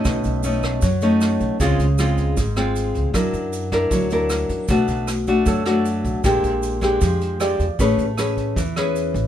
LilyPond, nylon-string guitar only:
\new Staff \with { instrumentName = "Nylon-string guitar" } { \time 4/4 \key b \dorian \tempo 4 = 155 << { <a cis' dis'>4 <a cis' dis'>4 r8 <a cis' dis'>4. | <gis bis eis'>8 r8 <gis bis eis'>4 r8 <gis bis eis'>4. | <d' e' ais'>4. <d' e' ais'>4 <d' e' ais'>4. | <a d' fis'>4 r8 <a d' fis'>4 <a d' fis'>4. |
<gis d' g'>4. <gis d' g'>4. <gis d' g'>8 r8 | <cis' gis' b'>8 r8 <cis' gis' b'>4 r8 <cis' gis' b'>4. | } \\ { b,2 fis2 | cis2 gis,2 | fis2 fis2 | b,2 fis2 |
bes,2 f2 | a2 e2 | } >> }